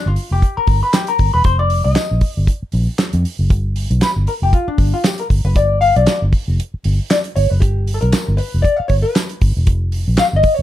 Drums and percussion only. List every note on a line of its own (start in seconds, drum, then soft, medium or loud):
0.16 open hi-hat medium
0.42 kick medium
0.42 closed hi-hat medium
0.67 kick loud
0.67 open hi-hat medium
0.94 snare loud
0.94 clap medium
0.94 closed hi-hat medium
0.94 tambourine medium
1.07 closed hi-hat medium
1.19 kick loud
1.19 open hi-hat medium
1.44 kick loud
1.44 closed hi-hat medium
1.70 open hi-hat medium
1.95 snare loud
1.95 clap medium
1.95 closed hi-hat medium
1.95 tambourine medium
2.21 kick medium
2.21 open hi-hat medium
2.47 kick medium
2.47 closed hi-hat medium
2.72 open hi-hat medium
2.99 snare loud
2.99 clap medium
2.99 closed hi-hat medium
2.99 tambourine medium
3.13 closed hi-hat medium
3.25 open hi-hat medium
3.50 kick loud
3.50 closed hi-hat medium
3.76 open hi-hat medium
3.91 closed hi-hat soft
4.01 snare loud
4.01 clap medium
4.01 closed hi-hat medium
4.01 tambourine loud
4.27 open hi-hat medium
4.53 kick loud
4.53 closed hi-hat medium
4.78 kick medium
4.78 open hi-hat medium
5.04 snare loud
5.04 clap medium
5.04 closed hi-hat medium
5.04 tambourine loud
5.18 closed hi-hat medium
5.30 kick medium
5.30 open hi-hat medium
5.56 kick loud
5.56 closed hi-hat medium
5.82 open hi-hat medium
5.96 closed hi-hat medium
6.06 snare loud
6.06 clap medium
6.06 closed hi-hat medium
6.06 tambourine medium
6.33 kick medium
6.33 open hi-hat medium
6.60 closed hi-hat medium
6.84 open hi-hat medium
7.11 snare loud
7.11 clap medium
7.11 closed hi-hat medium
7.11 tambourine medium
7.24 closed hi-hat medium
7.36 open hi-hat medium
7.62 kick loud
7.62 closed hi-hat medium
7.87 open hi-hat medium
8.02 closed hi-hat medium
8.12 snare loud
8.12 clap medium
8.12 closed hi-hat medium
8.12 tambourine medium
8.38 open hi-hat medium
8.64 kick medium
8.64 closed hi-hat medium
8.89 kick medium
8.89 open hi-hat medium
9.16 snare loud
9.16 clap medium
9.16 closed hi-hat medium
9.16 tambourine loud
9.29 closed hi-hat medium
9.41 kick loud
9.41 open hi-hat medium
9.67 kick loud
9.67 closed hi-hat medium
9.92 open hi-hat medium
10.17 snare loud
10.17 clap medium
10.17 closed hi-hat medium
10.17 tambourine medium
10.43 kick loud
10.43 open hi-hat medium